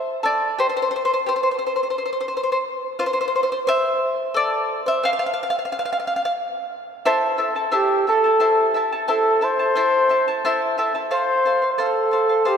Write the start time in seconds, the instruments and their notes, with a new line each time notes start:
Already playing: charango C5 E5
0.23 charango A4 D5
0.59 charango G4 C5
0.77 charango C5
0.82 charango C5
0.91 charango C5
0.96 charango C5
1.05 charango C5
1.14 charango C5
1.26 charango G4 C5
1.36 charango C5
1.43 charango C5
1.51 charango C5
1.59 charango C5
1.67 charango C5
1.76 charango C5
1.83 charango C5
1.90 charango C5
1.98 charango C5
2.06 charango C5
2.13 charango C5
2.21 charango C5
2.28 charango C5
2.37 charango C5
2.43 charango C5
2.52 charango C5
2.99 charango F4 C5
3.06 charango C5
3.13 charango C5
3.21 charango C5
3.28 charango C5
3.36 charango C5
3.43 charango C5
3.52 charango C5
3.67 charango C5 E5
4.34 charango A4 D5
4.86 charango C5 E5
5.03 charango C5 F5
5.13 charango F5
5.19 charango F5
5.26 charango F5
5.34 charango F5
5.43 charango F5
5.50 charango F5
5.59 charango F5
5.65 charango F5
5.72 charango F5
5.79 charango F5
5.85 charango F5
5.93 charango F5
6.00 charango F5
6.07 charango F5
6.16 charango F5
6.25 charango F5
7.05 charango E4 A4 C5 E5 A5
7.38 charango E4 A4 E5 A5
7.55 charango E4 A4 A5
7.71 charango E4 A4 C5 E5 A5, muted trumpet G4
8.07 charango E4 A4 E5 A5, muted trumpet A4
8.24 charango E4 A4 A5
8.40 charango E4 A4 C5 E5 A5
8.74 charango E4 A4 E5 A5
8.92 charango E4 A4 A5
9.08 charango E4 A4 C5 E5 A5, muted trumpet A4
9.41 charango E4 A4 E5 A5, muted trumpet C5
9.59 charango E4 A4 A5
9.75 charango E4 A4 C5 E5 A5
10.09 charango E4 A4 E5 A5
10.28 charango E4 A4 A5
10.45 charango E4 A4 C5 E5 A5
10.78 charango E4 A4 E5 A5
10.95 charango E4 A4 A5
11.11 charango A4 C5 F5, muted trumpet C5
11.45 charango A4 C5 F5
11.62 charango C5 F5
11.73 muted trumpet C5
11.78 charango A4 C5 F5, muted trumpet A4
12.11 charango A4 C5 F5
12.29 charango C5 F5
12.45 muted trumpet G4, charango A4 C5 F5